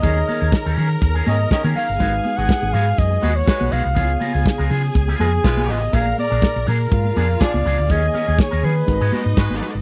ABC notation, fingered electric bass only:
X:1
M:4/4
L:1/16
Q:1/4=122
K:G#dor
V:1 name="Fingered electric bass" clef=bass
D,,2 z D,, z D,, D,2 D,,2 G,,2 z D, z =G,,, | G,,,2 z G,,, z G,,, G,,2 F,,2 D,,2 z B,,, B,,, ^B,,, | C,,2 z C,, z C,, C,2 C,,2 E,,2 B,,,2 =A,,,2 | A,,,2 z A,,, z A,,, A,,2 G,,2 E,,2 z C,, C,, =D,, |
D,,2 z D,, z D,, D,2 G,,, G,, z G,, G,, G,,, z =G,,, |]